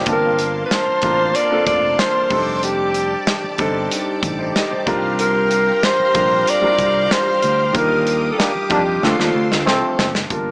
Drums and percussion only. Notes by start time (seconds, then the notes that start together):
0.06 kick, closed hi-hat
0.39 closed hi-hat
0.71 snare, closed hi-hat
1.02 kick, closed hi-hat
1.35 closed hi-hat
1.67 kick, closed hi-hat
1.99 snare, closed hi-hat
2.30 kick, open hi-hat
2.63 closed hi-hat
2.94 closed hi-hat
3.27 snare, closed hi-hat
3.58 kick, closed hi-hat
3.91 closed hi-hat
4.23 kick, closed hi-hat
4.56 snare, closed hi-hat
4.87 kick, closed hi-hat
5.19 closed hi-hat
5.51 closed hi-hat
5.83 snare, closed hi-hat
6.15 kick, closed hi-hat
6.47 closed hi-hat
6.79 kick, closed hi-hat
7.11 snare, closed hi-hat
7.42 closed hi-hat
7.75 kick, closed hi-hat
8.07 closed hi-hat
8.40 snare, closed hi-hat
8.70 kick, closed hi-hat
9.03 snare
9.20 snare
9.52 snare
9.67 snare
9.99 snare
10.15 snare
10.30 kick, closed hi-hat